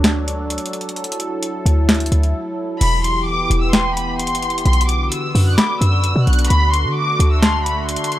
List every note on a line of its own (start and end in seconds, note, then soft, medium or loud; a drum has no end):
0.00 0.59 D2 loud
0.00 2.77 F#3 medium
0.00 0.95 D4 medium
0.00 2.77 A4 medium
0.04 snare loud
0.04 closed hi-hat medium
0.28 closed hi-hat medium
0.50 closed hi-hat medium
0.58 closed hi-hat medium
0.66 closed hi-hat medium
0.73 closed hi-hat medium
0.81 closed hi-hat medium
0.89 closed hi-hat medium
0.96 2.79 E4 medium
0.96 closed hi-hat medium
1.04 closed hi-hat medium
1.12 closed hi-hat medium
1.20 closed hi-hat medium
1.43 closed hi-hat medium
1.66 2.10 D2 loud
1.66 closed hi-hat medium
1.89 snare loud
1.89 closed hi-hat soft
1.95 closed hi-hat medium
2.00 closed hi-hat medium
2.06 closed hi-hat medium
2.12 2.34 D2 loud
2.12 closed hi-hat medium
2.23 closed hi-hat soft
2.81 3.47 E1 loud
2.81 4.64 E3 medium
2.81 6.47 B3 medium
2.81 4.64 G4 medium
2.81 3.03 B5 loud
2.81 closed hi-hat medium
2.81 crash loud
3.04 3.26 C6 medium
3.04 closed hi-hat medium
3.27 3.59 D6 loud
3.50 4.32 E1 loud
3.50 closed hi-hat medium
3.61 3.73 E6 medium
3.73 4.62 G5 medium
3.73 3.95 C6 medium
3.73 snare loud
3.73 closed hi-hat medium
3.97 4.18 B5 medium
3.97 closed hi-hat medium
4.19 4.63 C6 medium
4.19 closed hi-hat medium
4.27 4.50 F#1 loud
4.27 closed hi-hat medium
4.35 closed hi-hat medium
4.42 closed hi-hat medium
4.48 4.65 E1 loud
4.48 closed hi-hat medium
4.58 closed hi-hat medium
4.66 5.10 B1 loud
4.66 8.19 D3 medium
4.66 8.19 F#4 medium
4.66 4.88 C6 loud
4.66 closed hi-hat medium
4.73 closed hi-hat medium
4.81 closed hi-hat medium
4.89 5.11 D6 medium
4.89 closed hi-hat medium
5.12 5.44 E6 medium
5.12 closed hi-hat medium
5.35 5.57 F#2 loud
5.35 open hi-hat medium
5.47 5.57 F#6 medium
5.58 6.01 B5 medium
5.58 5.80 D6 medium
5.58 snare loud
5.58 closed hi-hat medium
5.81 6.14 F#2 loud
5.81 6.24 E6 medium
5.81 closed hi-hat medium
6.04 closed hi-hat medium
6.16 6.27 B2 loud
6.27 6.49 B1 loud
6.27 6.49 F#6 medium
6.27 closed hi-hat soft
6.33 closed hi-hat medium
6.39 closed hi-hat medium
6.45 closed hi-hat medium
6.50 6.86 D2 loud
6.50 8.19 A3 medium
6.50 6.72 B5 loud
6.50 closed hi-hat medium
6.73 6.95 C6 medium
6.73 closed hi-hat medium
6.85 7.18 D3 loud
6.96 7.29 D6 loud
7.19 7.97 D2 loud
7.19 closed hi-hat medium
7.32 7.42 E6 medium
7.42 8.19 A5 medium
7.42 7.64 C6 medium
7.42 snare loud
7.42 closed hi-hat medium
7.66 7.88 B5 medium
7.66 closed hi-hat medium
7.88 8.19 C6 medium
7.88 closed hi-hat medium
7.96 closed hi-hat medium
8.04 closed hi-hat medium
8.12 closed hi-hat medium